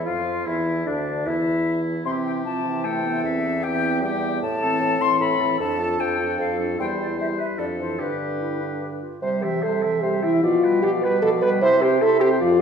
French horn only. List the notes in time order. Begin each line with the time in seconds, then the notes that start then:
0.06 F3
0.47 E3
0.86 D3
1.26 E3
2.06 E3
2.45 F3
2.65 E3
3.64 E3
4.03 G3
4.61 E3
5.01 E3
5.40 E3
5.60 F3
5.79 F3
6.19 F3
6.59 F3
6.78 G3
7.18 G3
7.58 F3
7.79 E3
8.00 D3
9.22 C5
9.43 G4
9.63 A4
10.03 G4
10.23 E4
10.43 F4
10.82 G4
11.02 B4
11.22 A4
11.42 B4
11.62 C5
11.82 G4
12.01 A4
12.21 G4
12.41 F4